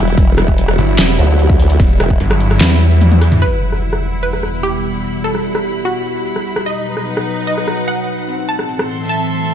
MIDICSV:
0, 0, Header, 1, 8, 480
1, 0, Start_track
1, 0, Key_signature, 1, "minor"
1, 0, Tempo, 405405
1, 207, Time_signature, 4, 2, 24, 8
1, 4048, Key_signature, 1, "minor"
1, 11297, End_track
2, 0, Start_track
2, 0, Title_t, "String section"
2, 0, Program_c, 0, 48
2, 0, Note_on_c, 0, 64, 82
2, 0, Note_on_c, 0, 78, 71
2, 5109, Note_on_c, 0, 83, 80
2, 7888, Note_off_c, 0, 64, 0
2, 7888, Note_off_c, 0, 78, 0
2, 7888, Note_on_c, 0, 63, 85
2, 8109, Note_on_c, 0, 71, 84
2, 8375, Note_on_c, 0, 78, 79
2, 9808, Note_off_c, 0, 63, 0
2, 9808, Note_off_c, 0, 71, 0
2, 9808, Note_on_c, 0, 60, 68
2, 9809, Note_off_c, 0, 83, 0
2, 10346, Note_on_c, 0, 69, 88
2, 10504, Note_on_c, 0, 84, 76
2, 10576, Note_off_c, 0, 78, 0
2, 10674, Note_on_c, 0, 76, 76
2, 11297, Note_off_c, 0, 60, 0
2, 11297, Note_off_c, 0, 69, 0
2, 11297, Note_off_c, 0, 76, 0
2, 11297, Note_off_c, 0, 84, 0
2, 11297, End_track
3, 0, Start_track
3, 0, Title_t, "Synth pluck"
3, 0, Program_c, 1, 84
3, 4048, Note_on_c, 1, 71, 95
3, 4914, Note_off_c, 1, 71, 0
3, 5006, Note_on_c, 1, 71, 85
3, 5398, Note_off_c, 1, 71, 0
3, 5485, Note_on_c, 1, 67, 94
3, 6112, Note_off_c, 1, 67, 0
3, 6208, Note_on_c, 1, 69, 90
3, 6834, Note_off_c, 1, 69, 0
3, 6927, Note_on_c, 1, 66, 90
3, 7794, Note_off_c, 1, 66, 0
3, 7888, Note_on_c, 1, 75, 97
3, 8754, Note_off_c, 1, 75, 0
3, 8847, Note_on_c, 1, 75, 84
3, 9239, Note_off_c, 1, 75, 0
3, 9326, Note_on_c, 1, 78, 90
3, 9953, Note_off_c, 1, 78, 0
3, 10047, Note_on_c, 1, 81, 91
3, 10673, Note_off_c, 1, 81, 0
3, 10766, Note_on_c, 1, 81, 88
3, 11297, Note_off_c, 1, 81, 0
3, 11297, End_track
4, 0, Start_track
4, 0, Title_t, "Ambient pad"
4, 0, Program_c, 2, 92
4, 0, Note_on_c, 2, 54, 87
4, 0, Note_on_c, 2, 55, 80
4, 0, Note_on_c, 2, 64, 100
4, 4001, Note_off_c, 2, 54, 0
4, 4001, Note_off_c, 2, 55, 0
4, 4001, Note_off_c, 2, 64, 0
4, 4046, Note_on_c, 2, 40, 83
4, 4047, Note_on_c, 2, 47, 77
4, 4047, Note_on_c, 2, 55, 92
4, 7849, Note_off_c, 2, 40, 0
4, 7849, Note_off_c, 2, 55, 0
4, 7889, Note_on_c, 2, 54, 79
4, 7889, Note_on_c, 2, 63, 90
4, 9760, Note_off_c, 2, 47, 0
4, 9789, Note_off_c, 2, 54, 0
4, 9789, Note_off_c, 2, 63, 0
4, 9808, Note_on_c, 2, 52, 77
4, 9809, Note_on_c, 2, 45, 85
4, 9809, Note_on_c, 2, 60, 93
4, 11297, Note_off_c, 2, 45, 0
4, 11297, Note_off_c, 2, 52, 0
4, 11297, Note_off_c, 2, 60, 0
4, 11297, End_track
5, 0, Start_track
5, 0, Title_t, "Detuned saw bass"
5, 0, Program_c, 3, 39
5, 927, Note_on_c, 3, 31, 100
5, 1148, Note_off_c, 3, 31, 0
5, 1168, Note_on_c, 3, 28, 98
5, 1389, Note_off_c, 3, 28, 0
5, 2127, Note_on_c, 3, 28, 98
5, 2349, Note_off_c, 3, 28, 0
5, 2607, Note_on_c, 3, 31, 98
5, 3068, Note_off_c, 3, 31, 0
5, 3087, Note_on_c, 3, 40, 97
5, 4028, Note_off_c, 3, 40, 0
5, 11297, End_track
6, 0, Start_track
6, 0, Title_t, "Wobble bass"
6, 0, Program_c, 4, 39
6, 0, Note_on_c, 4, 28, 99
6, 189, Note_off_c, 4, 28, 0
6, 207, Note_on_c, 4, 28, 99
6, 909, Note_off_c, 4, 28, 0
6, 1407, Note_on_c, 4, 38, 96
6, 2108, Note_off_c, 4, 38, 0
6, 2367, Note_on_c, 4, 28, 99
6, 2588, Note_off_c, 4, 28, 0
6, 11297, End_track
7, 0, Start_track
7, 0, Title_t, "Impact"
7, 0, Program_c, 5, 103
7, 4047, Note_on_c, 5, 60, 69
7, 5967, Note_off_c, 5, 60, 0
7, 11297, End_track
8, 0, Start_track
8, 0, Title_t, "Drums"
8, 89, Note_on_c, 9, 42, 61
8, 207, Note_off_c, 9, 42, 0
8, 207, Note_on_c, 9, 36, 111
8, 207, Note_on_c, 9, 42, 79
8, 326, Note_off_c, 9, 36, 0
8, 326, Note_off_c, 9, 42, 0
8, 448, Note_on_c, 9, 37, 82
8, 448, Note_on_c, 9, 42, 54
8, 566, Note_off_c, 9, 37, 0
8, 566, Note_off_c, 9, 42, 0
8, 570, Note_on_c, 9, 36, 58
8, 688, Note_off_c, 9, 36, 0
8, 688, Note_on_c, 9, 42, 84
8, 806, Note_off_c, 9, 42, 0
8, 809, Note_on_c, 9, 37, 76
8, 928, Note_off_c, 9, 37, 0
8, 928, Note_on_c, 9, 42, 52
8, 1046, Note_off_c, 9, 42, 0
8, 1168, Note_on_c, 9, 38, 116
8, 1168, Note_on_c, 9, 39, 91
8, 1168, Note_on_c, 9, 42, 84
8, 1286, Note_off_c, 9, 38, 0
8, 1286, Note_off_c, 9, 39, 0
8, 1286, Note_off_c, 9, 42, 0
8, 1408, Note_on_c, 9, 42, 57
8, 1526, Note_off_c, 9, 42, 0
8, 1648, Note_on_c, 9, 42, 82
8, 1766, Note_off_c, 9, 42, 0
8, 1770, Note_on_c, 9, 36, 102
8, 1888, Note_off_c, 9, 36, 0
8, 1888, Note_on_c, 9, 46, 99
8, 2006, Note_off_c, 9, 46, 0
8, 2011, Note_on_c, 9, 42, 68
8, 2127, Note_on_c, 9, 36, 111
8, 2128, Note_off_c, 9, 42, 0
8, 2128, Note_on_c, 9, 42, 83
8, 2245, Note_off_c, 9, 36, 0
8, 2246, Note_off_c, 9, 42, 0
8, 2369, Note_on_c, 9, 37, 78
8, 2369, Note_on_c, 9, 42, 58
8, 2487, Note_off_c, 9, 37, 0
8, 2487, Note_off_c, 9, 42, 0
8, 2489, Note_on_c, 9, 36, 60
8, 2608, Note_off_c, 9, 36, 0
8, 2608, Note_on_c, 9, 42, 86
8, 2726, Note_off_c, 9, 42, 0
8, 2731, Note_on_c, 9, 37, 75
8, 2847, Note_on_c, 9, 42, 55
8, 2849, Note_off_c, 9, 37, 0
8, 2966, Note_off_c, 9, 42, 0
8, 2970, Note_on_c, 9, 37, 58
8, 3087, Note_on_c, 9, 38, 119
8, 3087, Note_on_c, 9, 39, 93
8, 3087, Note_on_c, 9, 42, 86
8, 3088, Note_off_c, 9, 37, 0
8, 3205, Note_off_c, 9, 38, 0
8, 3205, Note_off_c, 9, 39, 0
8, 3205, Note_off_c, 9, 42, 0
8, 3327, Note_on_c, 9, 42, 57
8, 3445, Note_off_c, 9, 42, 0
8, 3449, Note_on_c, 9, 42, 41
8, 3567, Note_off_c, 9, 42, 0
8, 3567, Note_on_c, 9, 42, 85
8, 3567, Note_on_c, 9, 48, 64
8, 3685, Note_off_c, 9, 42, 0
8, 3685, Note_off_c, 9, 48, 0
8, 3689, Note_on_c, 9, 42, 41
8, 3689, Note_on_c, 9, 48, 63
8, 3807, Note_off_c, 9, 42, 0
8, 3807, Note_off_c, 9, 48, 0
8, 3807, Note_on_c, 9, 37, 52
8, 3807, Note_on_c, 9, 46, 100
8, 3925, Note_off_c, 9, 37, 0
8, 3925, Note_off_c, 9, 46, 0
8, 3929, Note_on_c, 9, 42, 66
8, 3929, Note_on_c, 9, 45, 85
8, 4047, Note_off_c, 9, 42, 0
8, 4047, Note_off_c, 9, 45, 0
8, 4287, Note_on_c, 9, 42, 53
8, 4405, Note_off_c, 9, 42, 0
8, 4409, Note_on_c, 9, 37, 48
8, 4527, Note_on_c, 9, 42, 79
8, 4528, Note_off_c, 9, 37, 0
8, 4645, Note_off_c, 9, 42, 0
8, 4649, Note_on_c, 9, 37, 72
8, 4767, Note_on_c, 9, 42, 51
8, 4768, Note_off_c, 9, 37, 0
8, 4885, Note_off_c, 9, 42, 0
8, 5007, Note_on_c, 9, 42, 78
8, 5126, Note_off_c, 9, 42, 0
8, 5130, Note_on_c, 9, 37, 48
8, 5247, Note_off_c, 9, 37, 0
8, 5247, Note_on_c, 9, 37, 57
8, 5247, Note_on_c, 9, 42, 52
8, 5366, Note_off_c, 9, 37, 0
8, 5366, Note_off_c, 9, 42, 0
8, 5487, Note_on_c, 9, 42, 74
8, 5605, Note_off_c, 9, 42, 0
8, 5850, Note_on_c, 9, 42, 61
8, 5968, Note_off_c, 9, 42, 0
8, 5968, Note_on_c, 9, 42, 76
8, 6086, Note_off_c, 9, 42, 0
8, 6209, Note_on_c, 9, 42, 51
8, 6327, Note_off_c, 9, 42, 0
8, 6331, Note_on_c, 9, 37, 51
8, 6448, Note_on_c, 9, 42, 76
8, 6449, Note_off_c, 9, 37, 0
8, 6566, Note_off_c, 9, 42, 0
8, 6570, Note_on_c, 9, 37, 73
8, 6688, Note_on_c, 9, 42, 50
8, 6689, Note_off_c, 9, 37, 0
8, 6806, Note_off_c, 9, 42, 0
8, 6927, Note_on_c, 9, 42, 75
8, 7046, Note_off_c, 9, 42, 0
8, 7167, Note_on_c, 9, 42, 50
8, 7286, Note_off_c, 9, 42, 0
8, 7407, Note_on_c, 9, 42, 75
8, 7526, Note_off_c, 9, 42, 0
8, 7530, Note_on_c, 9, 37, 50
8, 7648, Note_off_c, 9, 37, 0
8, 7769, Note_on_c, 9, 37, 77
8, 7769, Note_on_c, 9, 42, 59
8, 7888, Note_off_c, 9, 37, 0
8, 7888, Note_off_c, 9, 42, 0
8, 7888, Note_on_c, 9, 42, 72
8, 8006, Note_off_c, 9, 42, 0
8, 8127, Note_on_c, 9, 42, 49
8, 8246, Note_off_c, 9, 42, 0
8, 8250, Note_on_c, 9, 37, 53
8, 8368, Note_on_c, 9, 42, 73
8, 8369, Note_off_c, 9, 37, 0
8, 8486, Note_off_c, 9, 42, 0
8, 8489, Note_on_c, 9, 37, 72
8, 8607, Note_on_c, 9, 42, 49
8, 8608, Note_off_c, 9, 37, 0
8, 8726, Note_off_c, 9, 42, 0
8, 8848, Note_on_c, 9, 42, 73
8, 8966, Note_off_c, 9, 42, 0
8, 8970, Note_on_c, 9, 37, 50
8, 9088, Note_off_c, 9, 37, 0
8, 9088, Note_on_c, 9, 37, 62
8, 9088, Note_on_c, 9, 42, 51
8, 9207, Note_off_c, 9, 37, 0
8, 9207, Note_off_c, 9, 42, 0
8, 9328, Note_on_c, 9, 42, 72
8, 9446, Note_off_c, 9, 42, 0
8, 9691, Note_on_c, 9, 42, 57
8, 9808, Note_off_c, 9, 42, 0
8, 9808, Note_on_c, 9, 42, 69
8, 9927, Note_off_c, 9, 42, 0
8, 10048, Note_on_c, 9, 42, 49
8, 10167, Note_off_c, 9, 42, 0
8, 10170, Note_on_c, 9, 37, 53
8, 10288, Note_on_c, 9, 42, 71
8, 10289, Note_off_c, 9, 37, 0
8, 10406, Note_off_c, 9, 42, 0
8, 10411, Note_on_c, 9, 37, 78
8, 10529, Note_off_c, 9, 37, 0
8, 10529, Note_on_c, 9, 42, 47
8, 10647, Note_off_c, 9, 42, 0
8, 10768, Note_on_c, 9, 42, 74
8, 10887, Note_off_c, 9, 42, 0
8, 11008, Note_on_c, 9, 42, 51
8, 11127, Note_off_c, 9, 42, 0
8, 11131, Note_on_c, 9, 42, 35
8, 11248, Note_off_c, 9, 42, 0
8, 11248, Note_on_c, 9, 42, 68
8, 11297, Note_off_c, 9, 42, 0
8, 11297, End_track
0, 0, End_of_file